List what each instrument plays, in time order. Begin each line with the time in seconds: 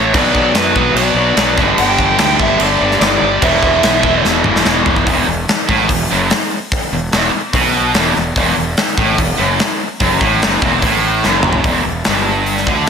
Already playing: fingered electric bass A1, distorted electric guitar A2 E3 A3, lead electric guitar C#5
0.13 fingered electric bass B1, distorted electric guitar B2 F#3 B3, lead electric guitar D5, kick, crash
0.35 kick
0.54 fingered electric bass F#2, lead electric guitar B4, snare, crash
0.75 fingered electric bass B1, distorted electric guitar B2 F#3 B3, kick
0.94 fingered electric bass B1, lead electric guitar D5, crash
1.14 fingered electric bass B1, distorted electric guitar F#3 B3
1.19 distorted electric guitar B2
1.36 fingered electric bass B1, distorted electric guitar B2 F#3 B3, snare, crash
1.57 fingered electric bass G1, distorted electric guitar G2 D3 G3, kick, snare
1.77 fingered electric bass G1, lead electric guitar G5, crash
1.99 kick
2.18 fingered electric bass D2, distorted electric guitar G2 D3 G3, snare, crash
2.40 fingered electric bass G1, lead electric guitar E5, kick
2.60 fingered electric bass G1, distorted electric guitar G2 D3 G3, lead electric guitar D5, crash
2.80 fingered electric bass G1, distorted electric guitar G2 D3 G3
2.91 snare
3.00 fingered electric bass G1, lead electric guitar D5, snare, crash
3.21 fingered electric bass G1
3.42 fingered electric bass E1, distorted electric guitar E2 B2 E3, lead electric guitar E5, kick, crash
3.63 kick
3.83 fingered electric bass B1, snare, crash
4.03 fingered electric bass E1, distorted electric guitar E2 B2 E3, kick
4.25 fingered electric bass E1, snare
4.44 fingered electric bass E1, distorted electric guitar E2 B2 E3, mid tom
4.56 snare
4.65 fingered electric bass E1, distorted electric guitar E2 B2 E3, snare
4.86 fingered electric bass E1, floor tom
4.96 kick
5.06 fingered electric bass E1, distorted electric guitar E2, kick, open hi-hat
5.26 fingered electric bass E1, distorted electric guitar E2
5.49 muted distorted electric guitar stroke, muted fingered electric bass stroke, snare, open hi-hat
5.69 fingered electric bass A1, distorted electric guitar A2, kick
5.89 fingered electric bass E1, distorted electric guitar E2, kick, open hi-hat
6.11 fingered electric bass F#1, distorted electric guitar F#2
6.30 snare, open hi-hat
6.72 kick, open hi-hat
6.92 fingered electric bass E1, distorted electric guitar E2
7.12 fingered electric bass E1, distorted electric guitar E2, snare, open hi-hat
7.24 snare
7.33 muted distorted electric guitar stroke, muted fingered electric bass stroke
7.53 fingered electric bass B1, distorted electric guitar B2, kick, open hi-hat
7.94 fingered electric bass E1, distorted electric guitar E2, snare, open hi-hat
8.16 fingered electric bass E1, distorted electric guitar E2, snare
8.36 fingered electric bass E1, distorted electric guitar E2, kick, open hi-hat
8.57 fingered electric bass E1, distorted electric guitar E2
8.77 muted distorted electric guitar stroke, muted fingered electric bass stroke, snare, open hi-hat
8.88 snare
8.97 fingered electric bass A1, distorted electric guitar A2, kick
9.17 fingered electric bass E1, distorted electric guitar E2, kick, open hi-hat
9.38 fingered electric bass F#1, distorted electric guitar F#2
9.59 snare, open hi-hat
10.00 fingered electric bass F#1, distorted electric guitar F#2, kick, open hi-hat
10.21 fingered electric bass A1, distorted electric guitar A2, kick
10.41 fingered electric bass F#1, distorted electric guitar F#2, snare, open hi-hat
10.62 fingered electric bass E1, distorted electric guitar E2, kick
10.82 fingered electric bass A1, distorted electric guitar A2, kick, open hi-hat
11.23 fingered electric bass F#1, distorted electric guitar F#2, snare
11.43 mid tom
11.53 floor tom
11.64 fingered electric bass E1, distorted electric guitar E2, kick, open hi-hat
11.85 fingered electric bass E1, distorted electric guitar E2
12.04 fingered electric bass G1, distorted electric guitar G2, snare, open hi-hat
12.46 open hi-hat
12.57 snare
12.67 fingered electric bass D2, distorted electric guitar D3, kick